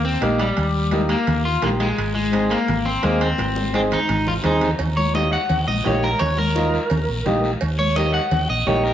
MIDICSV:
0, 0, Header, 1, 5, 480
1, 0, Start_track
1, 0, Key_signature, -3, "major"
1, 0, Tempo, 352113
1, 776, Time_signature, 4, 2, 24, 8
1, 12182, End_track
2, 0, Start_track
2, 0, Title_t, "Clean electric guitar"
2, 0, Program_c, 0, 27
2, 66, Note_on_c, 0, 60, 87
2, 307, Note_off_c, 0, 60, 0
2, 307, Note_on_c, 0, 58, 80
2, 537, Note_on_c, 0, 55, 92
2, 541, Note_off_c, 0, 58, 0
2, 1442, Note_off_c, 0, 55, 0
2, 1494, Note_on_c, 0, 58, 84
2, 1941, Note_off_c, 0, 58, 0
2, 1979, Note_on_c, 0, 65, 90
2, 2224, Note_off_c, 0, 65, 0
2, 2227, Note_on_c, 0, 58, 81
2, 2295, Note_off_c, 0, 58, 0
2, 2454, Note_on_c, 0, 56, 87
2, 2910, Note_off_c, 0, 56, 0
2, 2926, Note_on_c, 0, 56, 84
2, 3411, Note_off_c, 0, 56, 0
2, 3416, Note_on_c, 0, 58, 84
2, 3891, Note_on_c, 0, 60, 85
2, 3910, Note_off_c, 0, 58, 0
2, 4130, Note_on_c, 0, 58, 77
2, 4141, Note_off_c, 0, 60, 0
2, 4356, Note_off_c, 0, 58, 0
2, 4379, Note_on_c, 0, 60, 89
2, 5099, Note_off_c, 0, 60, 0
2, 5116, Note_on_c, 0, 60, 89
2, 5184, Note_off_c, 0, 60, 0
2, 5361, Note_on_c, 0, 63, 84
2, 5796, Note_off_c, 0, 63, 0
2, 5832, Note_on_c, 0, 65, 82
2, 5900, Note_off_c, 0, 65, 0
2, 6075, Note_on_c, 0, 63, 76
2, 6401, Note_off_c, 0, 63, 0
2, 6774, Note_on_c, 0, 73, 88
2, 7008, Note_off_c, 0, 73, 0
2, 7023, Note_on_c, 0, 75, 85
2, 7253, Note_off_c, 0, 75, 0
2, 7263, Note_on_c, 0, 78, 90
2, 7725, Note_off_c, 0, 78, 0
2, 7738, Note_on_c, 0, 75, 85
2, 8001, Note_off_c, 0, 75, 0
2, 8001, Note_on_c, 0, 73, 80
2, 8222, Note_off_c, 0, 73, 0
2, 8230, Note_on_c, 0, 70, 91
2, 8446, Note_on_c, 0, 73, 82
2, 8456, Note_off_c, 0, 70, 0
2, 8684, Note_off_c, 0, 73, 0
2, 8702, Note_on_c, 0, 70, 91
2, 10096, Note_off_c, 0, 70, 0
2, 10616, Note_on_c, 0, 73, 96
2, 10849, Note_off_c, 0, 73, 0
2, 10854, Note_on_c, 0, 75, 92
2, 11087, Note_off_c, 0, 75, 0
2, 11093, Note_on_c, 0, 78, 98
2, 11560, Note_off_c, 0, 78, 0
2, 11583, Note_on_c, 0, 75, 85
2, 11818, Note_off_c, 0, 75, 0
2, 11818, Note_on_c, 0, 73, 89
2, 12047, Note_off_c, 0, 73, 0
2, 12047, Note_on_c, 0, 70, 93
2, 12182, Note_off_c, 0, 70, 0
2, 12182, End_track
3, 0, Start_track
3, 0, Title_t, "Accordion"
3, 0, Program_c, 1, 21
3, 291, Note_on_c, 1, 58, 75
3, 294, Note_on_c, 1, 63, 62
3, 298, Note_on_c, 1, 67, 83
3, 629, Note_off_c, 1, 58, 0
3, 631, Note_off_c, 1, 63, 0
3, 633, Note_off_c, 1, 67, 0
3, 1248, Note_on_c, 1, 58, 84
3, 1257, Note_on_c, 1, 63, 75
3, 1263, Note_on_c, 1, 67, 94
3, 1588, Note_off_c, 1, 58, 0
3, 1592, Note_off_c, 1, 63, 0
3, 1595, Note_off_c, 1, 67, 0
3, 2212, Note_on_c, 1, 58, 70
3, 2219, Note_on_c, 1, 63, 67
3, 2226, Note_on_c, 1, 67, 79
3, 2550, Note_off_c, 1, 58, 0
3, 2553, Note_off_c, 1, 63, 0
3, 2557, Note_off_c, 1, 67, 0
3, 3162, Note_on_c, 1, 60, 70
3, 3168, Note_on_c, 1, 63, 64
3, 3174, Note_on_c, 1, 68, 76
3, 3505, Note_off_c, 1, 60, 0
3, 3508, Note_off_c, 1, 63, 0
3, 3511, Note_off_c, 1, 68, 0
3, 4130, Note_on_c, 1, 60, 76
3, 4134, Note_on_c, 1, 63, 66
3, 4137, Note_on_c, 1, 68, 80
3, 4469, Note_off_c, 1, 60, 0
3, 4471, Note_off_c, 1, 63, 0
3, 4473, Note_off_c, 1, 68, 0
3, 5090, Note_on_c, 1, 60, 72
3, 5097, Note_on_c, 1, 63, 61
3, 5105, Note_on_c, 1, 68, 73
3, 5429, Note_off_c, 1, 60, 0
3, 5433, Note_off_c, 1, 63, 0
3, 5437, Note_off_c, 1, 68, 0
3, 6043, Note_on_c, 1, 60, 70
3, 6050, Note_on_c, 1, 63, 68
3, 6056, Note_on_c, 1, 68, 82
3, 6386, Note_off_c, 1, 60, 0
3, 6390, Note_off_c, 1, 63, 0
3, 6392, Note_off_c, 1, 68, 0
3, 7016, Note_on_c, 1, 58, 69
3, 7019, Note_on_c, 1, 63, 68
3, 7026, Note_on_c, 1, 67, 75
3, 7352, Note_off_c, 1, 58, 0
3, 7354, Note_off_c, 1, 63, 0
3, 7357, Note_off_c, 1, 67, 0
3, 7966, Note_on_c, 1, 58, 76
3, 7975, Note_on_c, 1, 63, 69
3, 7981, Note_on_c, 1, 67, 87
3, 8307, Note_off_c, 1, 58, 0
3, 8312, Note_off_c, 1, 63, 0
3, 8315, Note_off_c, 1, 67, 0
3, 8926, Note_on_c, 1, 58, 73
3, 8935, Note_on_c, 1, 63, 68
3, 8941, Note_on_c, 1, 65, 79
3, 9267, Note_off_c, 1, 58, 0
3, 9271, Note_off_c, 1, 63, 0
3, 9275, Note_off_c, 1, 65, 0
3, 9898, Note_on_c, 1, 58, 92
3, 9904, Note_on_c, 1, 63, 78
3, 9904, Note_on_c, 1, 67, 102
3, 10233, Note_off_c, 1, 58, 0
3, 10236, Note_off_c, 1, 63, 0
3, 10236, Note_off_c, 1, 67, 0
3, 10854, Note_on_c, 1, 58, 74
3, 10862, Note_on_c, 1, 63, 69
3, 10872, Note_on_c, 1, 67, 78
3, 11190, Note_off_c, 1, 58, 0
3, 11195, Note_off_c, 1, 63, 0
3, 11200, Note_off_c, 1, 67, 0
3, 11817, Note_on_c, 1, 58, 75
3, 11819, Note_on_c, 1, 63, 69
3, 11823, Note_on_c, 1, 67, 86
3, 12152, Note_off_c, 1, 58, 0
3, 12153, Note_off_c, 1, 63, 0
3, 12155, Note_off_c, 1, 67, 0
3, 12182, End_track
4, 0, Start_track
4, 0, Title_t, "Fingered electric bass"
4, 0, Program_c, 2, 33
4, 0, Note_on_c, 2, 39, 84
4, 207, Note_off_c, 2, 39, 0
4, 296, Note_on_c, 2, 34, 98
4, 680, Note_off_c, 2, 34, 0
4, 783, Note_on_c, 2, 39, 89
4, 1548, Note_off_c, 2, 39, 0
4, 1738, Note_on_c, 2, 39, 90
4, 2121, Note_off_c, 2, 39, 0
4, 2225, Note_on_c, 2, 34, 91
4, 2605, Note_off_c, 2, 34, 0
4, 2700, Note_on_c, 2, 32, 83
4, 3467, Note_off_c, 2, 32, 0
4, 3660, Note_on_c, 2, 32, 92
4, 4042, Note_off_c, 2, 32, 0
4, 4138, Note_on_c, 2, 39, 96
4, 4521, Note_off_c, 2, 39, 0
4, 4623, Note_on_c, 2, 32, 90
4, 5389, Note_off_c, 2, 32, 0
4, 5580, Note_on_c, 2, 32, 89
4, 5962, Note_off_c, 2, 32, 0
4, 6060, Note_on_c, 2, 39, 95
4, 6443, Note_off_c, 2, 39, 0
4, 6530, Note_on_c, 2, 39, 81
4, 7300, Note_off_c, 2, 39, 0
4, 7492, Note_on_c, 2, 39, 99
4, 7686, Note_off_c, 2, 39, 0
4, 7734, Note_on_c, 2, 34, 99
4, 7927, Note_off_c, 2, 34, 0
4, 7978, Note_on_c, 2, 34, 89
4, 8361, Note_off_c, 2, 34, 0
4, 8458, Note_on_c, 2, 39, 85
4, 9225, Note_off_c, 2, 39, 0
4, 9421, Note_on_c, 2, 39, 98
4, 9611, Note_off_c, 2, 39, 0
4, 9660, Note_on_c, 2, 34, 102
4, 9851, Note_off_c, 2, 34, 0
4, 9901, Note_on_c, 2, 34, 93
4, 10283, Note_off_c, 2, 34, 0
4, 10386, Note_on_c, 2, 39, 92
4, 11150, Note_off_c, 2, 39, 0
4, 11335, Note_on_c, 2, 39, 96
4, 11527, Note_off_c, 2, 39, 0
4, 11581, Note_on_c, 2, 34, 104
4, 11771, Note_off_c, 2, 34, 0
4, 11820, Note_on_c, 2, 34, 93
4, 12182, Note_off_c, 2, 34, 0
4, 12182, End_track
5, 0, Start_track
5, 0, Title_t, "Drums"
5, 296, Note_on_c, 9, 63, 79
5, 296, Note_on_c, 9, 65, 64
5, 298, Note_on_c, 9, 73, 68
5, 432, Note_off_c, 9, 63, 0
5, 433, Note_off_c, 9, 65, 0
5, 434, Note_off_c, 9, 73, 0
5, 537, Note_on_c, 9, 65, 66
5, 546, Note_on_c, 9, 73, 64
5, 673, Note_off_c, 9, 65, 0
5, 682, Note_off_c, 9, 73, 0
5, 773, Note_on_c, 9, 65, 66
5, 780, Note_on_c, 9, 74, 68
5, 909, Note_off_c, 9, 65, 0
5, 916, Note_off_c, 9, 74, 0
5, 1245, Note_on_c, 9, 65, 62
5, 1252, Note_on_c, 9, 73, 67
5, 1255, Note_on_c, 9, 63, 76
5, 1382, Note_off_c, 9, 65, 0
5, 1388, Note_off_c, 9, 73, 0
5, 1392, Note_off_c, 9, 63, 0
5, 1487, Note_on_c, 9, 65, 67
5, 1495, Note_on_c, 9, 73, 67
5, 1623, Note_off_c, 9, 65, 0
5, 1631, Note_off_c, 9, 73, 0
5, 1726, Note_on_c, 9, 74, 68
5, 1734, Note_on_c, 9, 65, 61
5, 1737, Note_on_c, 9, 64, 80
5, 1862, Note_off_c, 9, 74, 0
5, 1870, Note_off_c, 9, 65, 0
5, 1874, Note_off_c, 9, 64, 0
5, 2204, Note_on_c, 9, 73, 72
5, 2212, Note_on_c, 9, 65, 65
5, 2212, Note_on_c, 9, 66, 68
5, 2215, Note_on_c, 9, 63, 76
5, 2215, Note_on_c, 9, 64, 66
5, 2340, Note_off_c, 9, 73, 0
5, 2349, Note_off_c, 9, 65, 0
5, 2349, Note_off_c, 9, 66, 0
5, 2351, Note_off_c, 9, 63, 0
5, 2351, Note_off_c, 9, 64, 0
5, 2451, Note_on_c, 9, 73, 68
5, 2456, Note_on_c, 9, 65, 64
5, 2587, Note_off_c, 9, 73, 0
5, 2592, Note_off_c, 9, 65, 0
5, 2680, Note_on_c, 9, 74, 64
5, 2704, Note_on_c, 9, 65, 66
5, 2816, Note_off_c, 9, 74, 0
5, 2841, Note_off_c, 9, 65, 0
5, 2939, Note_on_c, 9, 63, 71
5, 3075, Note_off_c, 9, 63, 0
5, 3161, Note_on_c, 9, 73, 67
5, 3178, Note_on_c, 9, 65, 64
5, 3180, Note_on_c, 9, 63, 81
5, 3297, Note_off_c, 9, 73, 0
5, 3314, Note_off_c, 9, 65, 0
5, 3317, Note_off_c, 9, 63, 0
5, 3399, Note_on_c, 9, 73, 72
5, 3424, Note_on_c, 9, 65, 66
5, 3536, Note_off_c, 9, 73, 0
5, 3560, Note_off_c, 9, 65, 0
5, 3648, Note_on_c, 9, 74, 66
5, 3656, Note_on_c, 9, 64, 78
5, 3658, Note_on_c, 9, 65, 59
5, 3784, Note_off_c, 9, 74, 0
5, 3793, Note_off_c, 9, 64, 0
5, 3794, Note_off_c, 9, 65, 0
5, 4129, Note_on_c, 9, 65, 69
5, 4129, Note_on_c, 9, 66, 65
5, 4133, Note_on_c, 9, 73, 65
5, 4135, Note_on_c, 9, 63, 74
5, 4266, Note_off_c, 9, 65, 0
5, 4266, Note_off_c, 9, 66, 0
5, 4269, Note_off_c, 9, 73, 0
5, 4271, Note_off_c, 9, 63, 0
5, 4377, Note_on_c, 9, 65, 71
5, 4379, Note_on_c, 9, 73, 64
5, 4513, Note_off_c, 9, 65, 0
5, 4516, Note_off_c, 9, 73, 0
5, 4610, Note_on_c, 9, 63, 93
5, 4611, Note_on_c, 9, 74, 68
5, 4622, Note_on_c, 9, 65, 65
5, 4747, Note_off_c, 9, 63, 0
5, 4747, Note_off_c, 9, 74, 0
5, 4759, Note_off_c, 9, 65, 0
5, 4855, Note_on_c, 9, 63, 81
5, 4991, Note_off_c, 9, 63, 0
5, 5092, Note_on_c, 9, 73, 66
5, 5096, Note_on_c, 9, 63, 79
5, 5099, Note_on_c, 9, 65, 61
5, 5228, Note_off_c, 9, 73, 0
5, 5233, Note_off_c, 9, 63, 0
5, 5235, Note_off_c, 9, 65, 0
5, 5330, Note_on_c, 9, 73, 65
5, 5341, Note_on_c, 9, 65, 67
5, 5345, Note_on_c, 9, 64, 73
5, 5466, Note_off_c, 9, 73, 0
5, 5478, Note_off_c, 9, 65, 0
5, 5481, Note_off_c, 9, 64, 0
5, 5574, Note_on_c, 9, 65, 63
5, 5577, Note_on_c, 9, 64, 78
5, 5583, Note_on_c, 9, 74, 63
5, 5710, Note_off_c, 9, 65, 0
5, 5713, Note_off_c, 9, 64, 0
5, 5719, Note_off_c, 9, 74, 0
5, 5818, Note_on_c, 9, 64, 94
5, 5954, Note_off_c, 9, 64, 0
5, 6048, Note_on_c, 9, 65, 66
5, 6048, Note_on_c, 9, 66, 72
5, 6052, Note_on_c, 9, 64, 67
5, 6057, Note_on_c, 9, 73, 69
5, 6184, Note_off_c, 9, 65, 0
5, 6184, Note_off_c, 9, 66, 0
5, 6189, Note_off_c, 9, 64, 0
5, 6193, Note_off_c, 9, 73, 0
5, 6287, Note_on_c, 9, 65, 69
5, 6292, Note_on_c, 9, 64, 91
5, 6302, Note_on_c, 9, 73, 64
5, 6424, Note_off_c, 9, 65, 0
5, 6428, Note_off_c, 9, 64, 0
5, 6438, Note_off_c, 9, 73, 0
5, 6527, Note_on_c, 9, 56, 100
5, 6538, Note_on_c, 9, 74, 66
5, 6541, Note_on_c, 9, 63, 32
5, 6541, Note_on_c, 9, 64, 68
5, 6664, Note_off_c, 9, 56, 0
5, 6675, Note_off_c, 9, 74, 0
5, 6677, Note_off_c, 9, 63, 0
5, 6677, Note_off_c, 9, 64, 0
5, 6784, Note_on_c, 9, 63, 71
5, 6920, Note_off_c, 9, 63, 0
5, 7018, Note_on_c, 9, 63, 89
5, 7020, Note_on_c, 9, 73, 65
5, 7154, Note_off_c, 9, 63, 0
5, 7156, Note_off_c, 9, 73, 0
5, 7257, Note_on_c, 9, 73, 67
5, 7394, Note_off_c, 9, 73, 0
5, 7489, Note_on_c, 9, 56, 75
5, 7494, Note_on_c, 9, 74, 70
5, 7499, Note_on_c, 9, 63, 35
5, 7499, Note_on_c, 9, 64, 81
5, 7626, Note_off_c, 9, 56, 0
5, 7630, Note_off_c, 9, 74, 0
5, 7635, Note_off_c, 9, 63, 0
5, 7635, Note_off_c, 9, 64, 0
5, 7747, Note_on_c, 9, 63, 67
5, 7884, Note_off_c, 9, 63, 0
5, 7963, Note_on_c, 9, 66, 71
5, 7979, Note_on_c, 9, 73, 75
5, 7985, Note_on_c, 9, 63, 83
5, 7985, Note_on_c, 9, 64, 70
5, 8099, Note_off_c, 9, 66, 0
5, 8116, Note_off_c, 9, 73, 0
5, 8122, Note_off_c, 9, 63, 0
5, 8122, Note_off_c, 9, 64, 0
5, 8214, Note_on_c, 9, 73, 67
5, 8350, Note_off_c, 9, 73, 0
5, 8443, Note_on_c, 9, 56, 107
5, 8464, Note_on_c, 9, 63, 32
5, 8464, Note_on_c, 9, 64, 68
5, 8465, Note_on_c, 9, 74, 67
5, 8579, Note_off_c, 9, 56, 0
5, 8600, Note_off_c, 9, 63, 0
5, 8600, Note_off_c, 9, 64, 0
5, 8602, Note_off_c, 9, 74, 0
5, 8697, Note_on_c, 9, 63, 72
5, 8833, Note_off_c, 9, 63, 0
5, 8938, Note_on_c, 9, 63, 93
5, 8942, Note_on_c, 9, 73, 69
5, 9075, Note_off_c, 9, 63, 0
5, 9079, Note_off_c, 9, 73, 0
5, 9186, Note_on_c, 9, 73, 72
5, 9322, Note_off_c, 9, 73, 0
5, 9404, Note_on_c, 9, 56, 82
5, 9421, Note_on_c, 9, 63, 34
5, 9421, Note_on_c, 9, 64, 83
5, 9427, Note_on_c, 9, 74, 70
5, 9541, Note_off_c, 9, 56, 0
5, 9558, Note_off_c, 9, 63, 0
5, 9558, Note_off_c, 9, 64, 0
5, 9564, Note_off_c, 9, 74, 0
5, 9893, Note_on_c, 9, 66, 70
5, 9895, Note_on_c, 9, 63, 77
5, 9895, Note_on_c, 9, 64, 72
5, 9899, Note_on_c, 9, 73, 76
5, 10030, Note_off_c, 9, 66, 0
5, 10032, Note_off_c, 9, 63, 0
5, 10032, Note_off_c, 9, 64, 0
5, 10036, Note_off_c, 9, 73, 0
5, 10140, Note_on_c, 9, 73, 69
5, 10277, Note_off_c, 9, 73, 0
5, 10371, Note_on_c, 9, 56, 103
5, 10390, Note_on_c, 9, 74, 74
5, 10508, Note_off_c, 9, 56, 0
5, 10526, Note_off_c, 9, 74, 0
5, 10615, Note_on_c, 9, 63, 76
5, 10751, Note_off_c, 9, 63, 0
5, 10854, Note_on_c, 9, 63, 92
5, 10872, Note_on_c, 9, 73, 70
5, 10990, Note_off_c, 9, 63, 0
5, 11009, Note_off_c, 9, 73, 0
5, 11098, Note_on_c, 9, 73, 75
5, 11234, Note_off_c, 9, 73, 0
5, 11332, Note_on_c, 9, 56, 77
5, 11334, Note_on_c, 9, 63, 35
5, 11334, Note_on_c, 9, 64, 80
5, 11339, Note_on_c, 9, 74, 70
5, 11469, Note_off_c, 9, 56, 0
5, 11471, Note_off_c, 9, 63, 0
5, 11471, Note_off_c, 9, 64, 0
5, 11475, Note_off_c, 9, 74, 0
5, 11814, Note_on_c, 9, 66, 68
5, 11817, Note_on_c, 9, 63, 81
5, 11817, Note_on_c, 9, 64, 72
5, 11821, Note_on_c, 9, 73, 73
5, 11950, Note_off_c, 9, 66, 0
5, 11953, Note_off_c, 9, 63, 0
5, 11953, Note_off_c, 9, 64, 0
5, 11957, Note_off_c, 9, 73, 0
5, 12062, Note_on_c, 9, 73, 68
5, 12182, Note_off_c, 9, 73, 0
5, 12182, End_track
0, 0, End_of_file